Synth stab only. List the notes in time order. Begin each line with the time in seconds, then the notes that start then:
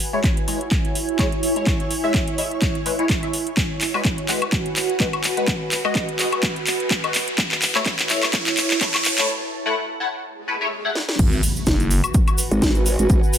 0.13 G#3 E4 C#5
0.48 G#3 E4 C#5
1.19 G#3 E4 C#5
1.56 G#3 E4 C#5
2.04 G#3 E4 E5
2.38 G#3 E4 E5
2.86 G#3 E4 B4
2.99 G#3 E4 C#5
3.23 G#3 E4 E5
3.94 G#3 F#4 B4
4.29 G#3 F#4 B4
5.00 G#3 F#4 B4
5.37 G#3 F#4 B4
5.85 G#3 F#4 D#5
6.19 G#3 F#4 D#5
7.04 G#3 F#4 B4
7.75 A3 E4 C#5
8.10 A3 E4 C#5
8.81 A3 E4 C#5
9.18 A3 E4 C#5
9.66 A3 E4 F#5
10.00 A3 E4 F#5
10.48 A3 E4 B4
10.61 A3 E4 C#5
10.85 A3 E4 F#5